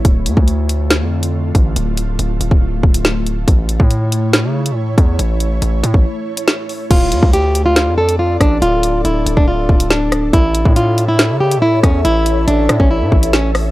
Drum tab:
CC |----------------|----------------|----------------|----------------|
HH |x-x-x-x-x--x--x-|x-x-x-x----x--x-|x-x-x-x-x--x--x-|x-x-x-x----x--o-|
SD |--------o-------|------------o---|--------o-------|------------o---|
BD |o--o----------o-|-------o--o-----|o--o----------o-|-------o--------|

CC |x---------------|----------------|----------------|----------------|
HH |x-x-x-x-x--x--x-|x-x-x-x----x--x-|x-x-x-x-x--x--x-|x-x-x-x----x--o-|
SD |--------o-----r-|------------o-r-|--------o-----r-|------r-----o-r-|
BD |o--o----------o-|-------o--o-----|o--o----------o-|-------o--o-----|